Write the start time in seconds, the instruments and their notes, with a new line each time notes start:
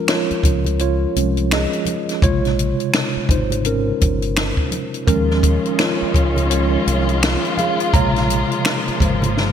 Already playing: tine electric piano F3 G#3 C#4 F4 A#4
0.07 tine electric piano F4 C#5, finger snap, snare, closed hi-hat, muted conga
0.31 muted fingered electric bass stroke, closed hi-hat
0.43 fingered electric bass C#2, kick, closed hi-hat, muted conga, high conga
0.64 closed hi-hat, low conga
0.79 tine electric piano F4 C#5, closed hi-hat
1.16 fingered electric bass C2, tine electric piano F3 G#3 C#4, closed hi-hat, high conga
1.37 closed hi-hat
1.51 tine electric piano G#4 D#5, finger snap, snare, closed hi-hat
1.73 closed hi-hat
1.85 closed hi-hat, muted conga, high conga, low conga
2.09 snare, closed hi-hat
2.22 fingered electric bass A#1, tine electric piano C3 C#3 G#3 F4 C#5, kick, closed hi-hat
2.45 snare, closed hi-hat
2.56 closed hi-hat, muted conga
2.80 closed hi-hat
2.92 finger snap, snare, closed hi-hat, muted conga
3.17 muted fingered electric bass stroke
3.28 fingered electric bass G#1, tine electric piano D#4 C5, kick, closed hi-hat, high conga
3.50 closed hi-hat, low conga
3.65 tine electric piano C#4 A#4, closed hi-hat, muted conga
4.01 fingered electric bass G1, kick, closed hi-hat, high conga
4.22 closed hi-hat
4.36 finger snap, snare, closed hi-hat, muted conga
4.57 kick
4.72 closed hi-hat, muted conga, high conga, low conga
4.94 closed hi-hat
5.07 fingered electric bass D#2, string section D#3 G#3 C#4 F4, tine electric piano F3 G#3 C#4 A#4, kick, closed hi-hat
5.31 snare
5.42 kick, closed hi-hat, muted conga
5.66 closed hi-hat
5.79 tine electric piano F4 C#5, finger snap, snare, closed hi-hat
6.02 muted fingered electric bass stroke
6.14 fingered electric bass C#2, kick, closed hi-hat, high conga
6.36 closed hi-hat, low conga
6.50 tine electric piano F3 G#3 C#4 F4 C#5, closed hi-hat
6.87 fingered electric bass C2, closed hi-hat, muted conga, high conga
7.09 closed hi-hat
7.23 finger snap, snare, closed hi-hat, muted conga
7.45 closed hi-hat
7.57 tine electric piano G#4 F5, closed hi-hat, high conga, low conga
7.80 closed hi-hat
7.93 fingered electric bass A#1, tine electric piano C3 C#3 G#3 C#5 A#5, string section F3 A#3, kick, closed hi-hat, muted conga
8.16 snare, closed hi-hat
8.28 closed hi-hat, muted conga, high conga
8.52 closed hi-hat
8.65 finger snap, snare, closed hi-hat
8.88 muted fingered electric bass stroke, closed hi-hat
9.00 fingered electric bass G#1, tine electric piano C#3 G#3 C5, kick, closed hi-hat, muted conga, high conga
9.22 closed hi-hat, low conga
9.37 fingered electric bass G1, snare